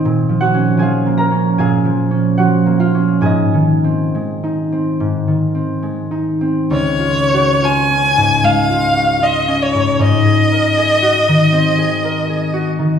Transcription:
<<
  \new Staff \with { instrumentName = "Violin" } { \time 4/4 \key des \major \tempo 4 = 76 r1 | r1 | des''4 aes''4 f''4 ees''8 des''8 | ees''2.~ ees''8 r8 | }
  \new Staff \with { instrumentName = "Harp" } { \time 4/4 \key des \major << { <bes' des'' bes''>8 <ges' ges''>8 <aes' f'' aes''>8 <bes' bes''>8 <aes' f'' aes''>4 <ges' ges''>8 <f' f''>8 | <aes' ees'' aes''>1~ | <aes' ees'' aes''>1 | r1 | } \\ { \tuplet 3/2 { <bes, aes'>8 f8 des'8 f8 bes8 des'8 bes,8 f8 des'8 f8 bes8 des'8 } | \tuplet 3/2 { aes,8 ees8 c'8 aes8 ees'8 c'8 aes,8 ees8 c'8 aes8 ees'8 c'8 } | \tuplet 3/2 { des,8 f'8 ges'8 f'8 des'8 aes,8 aes8 f'8 ges'8 f'8 des'8 aes,8 } | \tuplet 3/2 { aes,8 aes'8 bes'8 aes'8 ges'8 ees8 c'8 aes'8 bes'8 aes'8 ges'8 ees8 } | } >> }
>>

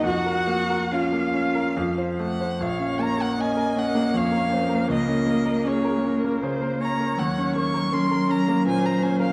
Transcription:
<<
  \new Staff \with { instrumentName = "Violin" } { \time 3/4 \key bes \minor \tempo 4 = 79 ges''4 f''4. ges''8 | f''8 bes''16 ges''16 aes''8 ges''8 f''4 | ees''4 des''4 r8 bes''8 | ges''8 des'''8 c'''8 bes''8 aes''16 bes''16 aes''16 f''16 | }
  \new Staff \with { instrumentName = "Viola" } { \time 3/4 \key bes \minor ges''4 f''4. r8 | des''4 ees''4 des''8 c''8 | bes'4 aes'8 bes'8 c''8 des''8~ | des''4 bes'4 c''4 | }
  \new Staff \with { instrumentName = "Cello" } { \time 3/4 \key bes \minor ges'4 f'4. r8 | bes2.~ | bes2. | ges2. | }
  \new Staff \with { instrumentName = "Grand piano" } { \time 3/4 \key bes \minor f,16 bes'16 bes16 bes'16 des'16 bes16 des'16 bes'16 f,16 c''16 a16 c''16 | bes,,16 des'16 bes16 bes'16 des'16 bes'16 des'16 bes16 f,16 bes'16 des'16 bes'16 | des,16 des'16 bes16 bes'16 des'16 bes'16 des'16 bes16 des16 bes'16 des'16 bes'16 | ees,16 des'16 bes16 bes'16 des'16 bes'16 des'16 bes16 bes,16 bes'16 des'16 bes'16 | }
>>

